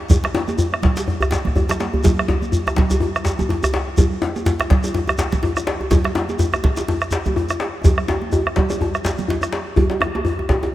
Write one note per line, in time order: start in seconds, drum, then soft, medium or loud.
0.00 djembe slap soft
0.10 bombo low loud
0.10 cowbell medium
0.10 djembe slap soft
0.10 high conga soft
0.10 low conga medium
0.10 djembe bass medium
0.10 shekere medium
0.24 bombo rim medium
0.24 djembe slap medium
0.24 djembe slap soft
0.35 djembe slap medium
0.35 djembe tone medium
0.35 high conga soft
0.48 bombo rim soft
0.48 cowbell soft
0.48 high conga medium
0.48 shekere soft
0.58 high conga soft
0.58 djembe bass medium
0.58 shekere medium
0.73 bombo rim medium
0.73 djembe slap soft
0.83 bombo low loud
0.83 djembe slap medium
0.83 low conga medium
0.97 cowbell soft
0.97 djembe slap loud
0.97 shekere soft
1.07 djembe slap soft
1.07 high conga soft
1.07 djembe bass medium
1.21 bombo rim medium
1.21 djembe slap soft
1.21 djembe bass medium
1.21 shekere soft
1.31 cowbell soft
1.31 djembe slap loud
1.31 djembe slap medium
1.31 shekere medium
1.45 bombo rim soft
1.45 bombo low medium
1.45 high conga medium
1.45 low conga medium
1.56 bombo rim soft
1.56 djembe slap soft
1.56 djembe bass medium
1.56 low conga soft
1.56 djembe bass medium
1.56 shekere soft
1.69 bombo rim medium
1.69 djembe slap loud
1.69 djembe tone medium
1.69 low conga soft
1.69 shekere soft
1.80 cowbell soft
1.80 djembe slap medium
1.80 high conga medium
1.80 shekere soft
1.94 high conga medium
1.94 djembe bass medium
2.04 bombo low loud
2.04 cowbell medium
2.04 djembe slap loud
2.04 djembe bass medium
2.04 low conga medium
2.04 shekere medium
2.19 bombo rim medium
2.28 djembe slap medium
2.28 djembe tone medium
2.28 high conga soft
2.28 djembe bass medium
2.42 high conga medium
2.42 shekere soft
2.52 djembe bass medium
2.52 shekere medium
2.66 bombo rim medium
2.66 djembe slap soft
2.66 high conga soft
2.66 djembe tone loud
2.66 shekere soft
2.76 djembe slap medium
2.76 low conga medium
2.78 bombo low loud
2.78 djembe slap medium
2.90 cowbell soft
2.90 djembe tone soft
2.90 djembe bass medium
2.90 shekere soft
3.00 djembe tone medium
3.00 djembe bass medium
3.15 bombo rim medium
3.15 shekere soft
3.25 cowbell soft
3.25 djembe slap medium
3.25 djembe tone medium
3.25 shekere medium
3.39 bombo low medium
3.39 high conga medium
3.39 djembe tone loud
3.39 low conga medium
3.39 shekere soft
3.49 bombo rim soft
3.49 djembe slap medium
3.49 djembe bass medium
3.62 bombo rim medium
3.62 djembe tone medium
3.62 high conga soft
3.62 djembe bass medium
3.62 shekere soft
3.74 cowbell soft
3.74 djembe slap medium
3.74 djembe tone medium
3.88 djembe slap soft
3.97 bombo low loud
3.97 cowbell medium
3.97 djembe tone medium
3.97 low conga medium
3.97 djembe bass medium
3.97 shekere medium
4.22 djembe slap medium
4.22 djembe tone medium
4.36 cowbell soft
4.36 high conga medium
4.36 shekere soft
4.46 djembe slap loud
4.46 djembe bass medium
4.46 shekere medium
4.60 bombo rim medium
4.60 djembe slap medium
4.60 djembe slap soft
4.60 high conga soft
4.60 shekere soft
4.70 bombo low loud
4.70 djembe slap medium
4.70 low conga medium
4.84 cowbell soft
4.84 djembe tone medium
4.84 shekere soft
4.94 djembe slap medium
4.94 djembe bass medium
5.08 bombo rim medium
5.08 djembe tone medium
5.08 shekere soft
5.18 cowbell soft
5.18 djembe slap medium
5.18 djembe slap loud
5.18 shekere medium
5.32 bombo low medium
5.32 djembe slap medium
5.32 high conga medium
5.32 low conga medium
5.32 shekere soft
5.43 bombo rim soft
5.43 djembe slap medium
5.43 djembe bass medium
5.56 bombo rim medium
5.56 high conga soft
5.56 djembe tone medium
5.56 shekere soft
5.67 cowbell soft
5.67 djembe slap medium
5.81 djembe slap soft
5.81 djembe tone medium
5.91 bombo low loud
5.91 cowbell medium
5.91 djembe slap loud
5.91 djembe bass medium
5.91 low conga medium
5.91 shekere medium
6.04 bombo rim medium
6.04 djembe slap medium
6.15 djembe slap medium
6.15 djembe tone medium
6.15 high conga soft
6.29 cowbell soft
6.29 high conga medium
6.29 shekere soft
6.39 djembe slap medium
6.39 djembe bass medium
6.39 shekere medium
6.53 bombo rim medium
6.53 djembe slap soft
6.53 djembe tone medium
6.53 high conga soft
6.53 shekere soft
6.64 bombo low loud
6.64 djembe slap loud
6.64 low conga medium
6.77 cowbell soft
6.77 djembe slap medium
6.77 djembe tone medium
6.77 shekere soft
6.88 djembe slap medium
6.88 djembe bass medium
7.01 bombo rim medium
7.01 shekere soft
7.11 cowbell soft
7.11 djembe slap medium
7.11 shekere medium
7.25 bombo low medium
7.25 high conga medium
7.25 djembe tone medium
7.25 low conga medium
7.25 shekere soft
7.36 bombo rim soft
7.36 djembe bass medium
7.49 bombo rim medium
7.49 high conga soft
7.49 djembe tone medium
7.49 shekere soft
7.60 cowbell soft
7.60 djembe slap medium
7.84 bombo low medium
7.84 cowbell medium
7.84 djembe slap soft
7.84 djembe tone loud
7.84 djembe bass medium
7.84 low conga medium
7.84 shekere medium
7.98 bombo rim medium
7.98 djembe slap soft
7.98 high conga soft
8.08 bombo rim soft
8.08 djembe slap medium
8.08 djembe tone medium
8.08 high conga soft
8.08 djembe tone loud
8.22 high conga medium
8.32 high conga soft
8.32 djembe tone loud
8.32 djembe bass medium
8.32 shekere medium
8.46 bombo rim medium
8.46 high conga soft
8.56 bombo low medium
8.56 djembe slap medium
8.56 djembe tone medium
8.56 low conga medium
8.70 cowbell medium
8.70 djembe slap soft
8.70 high conga soft
8.70 djembe tone medium
8.70 shekere soft
8.81 djembe tone medium
8.81 djembe bass medium
8.94 bombo rim medium
8.94 shekere soft
9.05 cowbell medium
9.05 djembe slap medium
9.05 djembe slap loud
9.05 high conga soft
9.05 shekere medium
9.18 high conga medium
9.18 low conga medium
9.18 shekere soft
9.28 djembe slap medium
9.28 djembe bass medium
9.41 bombo rim medium
9.41 djembe tone medium
9.41 shekere soft
9.53 cowbell soft
9.53 djembe slap medium
9.76 bombo low medium
9.76 cowbell medium
9.76 high conga soft
9.76 djembe bass medium
9.76 low conga medium
9.76 djembe bass loud
9.90 djembe slap medium
9.90 djembe tone medium
10.01 bombo rim medium
10.01 djembe slap soft
10.01 djembe tone medium
10.01 high conga soft
10.01 djembe tone medium
10.15 cowbell soft
10.15 high conga medium
10.15 djembe tone medium
10.25 high conga soft
10.25 djembe bass medium
10.39 bombo rim soft
10.39 djembe tone medium
10.49 bombo low loud
10.49 djembe slap medium
10.49 djembe bass medium
10.63 cowbell soft
10.63 djembe tone medium